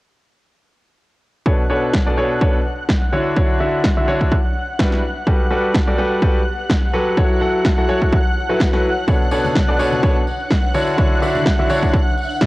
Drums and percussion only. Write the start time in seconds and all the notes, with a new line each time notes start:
1.46 kick
1.93 kick, snare
2.41 kick
2.89 kick, snare
3.36 kick
3.84 kick, snare
4.21 kick
4.32 kick
4.79 kick, snare
4.92 snare
5.27 kick
5.74 kick, snare
6.22 kick
6.70 kick, snare
7.17 kick
7.65 kick, snare
8.02 kick
8.13 kick
8.60 kick, snare
8.73 snare
9.08 kick, tambourine, high conga
9.31 tambourine
9.45 tambourine, high conga
9.55 kick, snare, tambourine
9.79 tambourine
9.92 tambourine, high conga
10.03 kick, tambourine
10.27 tambourine
10.40 tambourine
10.50 kick, snare, tambourine
10.74 tambourine
10.87 tambourine
10.98 kick, tambourine, high conga
11.22 tambourine
11.35 tambourine, high conga
11.45 kick, snare, tambourine
11.70 tambourine
11.83 kick, tambourine, high conga
11.93 kick, tambourine
12.17 tambourine
12.30 tambourine
12.41 kick, snare, tambourine